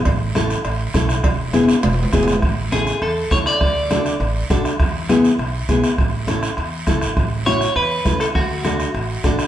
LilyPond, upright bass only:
\new Staff \with { instrumentName = "Upright bass" } { \clef bass \time 4/4 \key a \major \tempo 4 = 202 a,,2 a,,4 b,,4 | e,,2 e,,4 e,,4 | a,,2 e,4 e,8 r8 | d,2 a,,4 a,,8 r8 |
e,2 b,,4 b,,8 r8 | a,,2 e,4 fis,,8 gis,,8 | a,,2 e,4 e,8 r8 | d,2 a,,4 a,,8 r8 | }